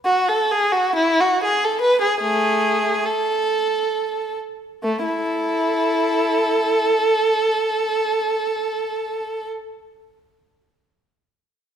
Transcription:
0.05 F#4
0.28 A4
0.51 G#4
0.72 F#4
0.96 E4
1.20 F#4
1.44 G#4
1.64 A4
1.82 B4
2.02 G#4
2.21 A3 G#4
3.05 A4
4.83 A3
5.05 E4 A4

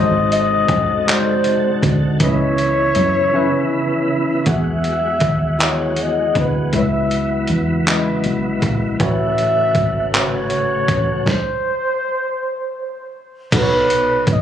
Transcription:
Already playing: G#1 C3 G#3 D#4 F#4 A4 C5 C#5 D#5 F#5
0.32 D#5, closed hi-hat
0.69 F#1, kick, closed hi-hat
1.07 G#3 D#4 F#4 A4 C5 D5, clap, closed hi-hat
1.17 D#5
1.44 closed hi-hat
1.83 D2, kick, closed hi-hat
2.20 C#2 C#3 E3 B3 C#4 D#4 E4 B4 C#5, kick, closed hi-hat
2.24 D#5
2.28 E4
2.58 closed hi-hat
2.95 F#2, closed hi-hat
3.33 C#3 C#4 E4 B4 E5
4.46 E2 E3 F#3 G#3 B3 F#4 G#4 E5, kick, closed hi-hat
4.50 E5
4.84 closed hi-hat
5.20 D#2, kick, closed hi-hat
5.59 B3 E4 F#4 G#4 D#5, clap, closed hi-hat
5.63 C#5
5.96 closed hi-hat
6.02 D#5
6.35 D2 B4, kick, closed hi-hat
6.73 C#2 C#3 G#3 B3 E4 B4 C#5 E5, kick, closed hi-hat
6.83 E5
7.11 closed hi-hat
7.47 E2, closed hi-hat
7.87 C#3 G#3 E4 B4 D#5, clap, closed hi-hat
8.24 B1, closed hi-hat
8.62 A#1, kick, closed hi-hat
9.00 A1 A2 C#3 A3 F#4 B4 C#5 E5, kick, closed hi-hat
9.38 closed hi-hat
9.75 G#1, kick, closed hi-hat
10.13 C#3 A3 F#4 B4 C#5, clap, closed hi-hat
10.50 closed hi-hat
10.88 A1, kick, closed hi-hat
11.26 C5, kick, snare
13.52 B1 B2 B3 D#4 A4 B4, kick, closed hi-hat, crash
13.57 B4
13.62 C#5
13.90 closed hi-hat
14.27 G#1, kick, closed hi-hat
14.33 D#5

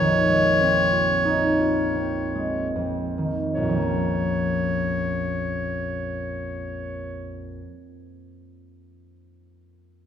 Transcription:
Already playing: A#1 F2 F3 G#3 C4 F4 C#5
0.00 D#3
0.29 G#3
0.60 C4
0.92 F4
1.25 D#4
1.60 F4
1.95 C4
2.35 G#3
2.76 F2
3.18 D#3
3.54 A#1 C#5
3.63 F2
3.69 F3
3.76 A#3
3.82 C#4
3.88 F4

